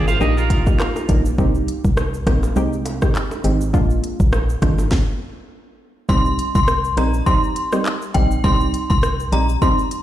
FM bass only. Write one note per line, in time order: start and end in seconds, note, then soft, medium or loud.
0.00 0.16 G#1 loud
0.21 0.71 A#1 loud
1.09 1.34 A#1 medium
1.38 1.63 C2 loud
1.85 2.21 C2 medium
2.27 2.52 A#1 loud
2.56 3.06 C2 loud
3.44 3.75 G#1 medium
3.74 3.99 A#1 loud
4.20 4.56 A#1 medium
4.62 4.87 G#1 loud
6.09 6.34 C2 loud
6.55 6.91 C2 medium
6.97 7.22 A#1 loud
8.15 8.40 A#1 medium
8.44 8.69 C2 loud
8.90 9.26 C2 medium
9.32 9.57 A#1 loud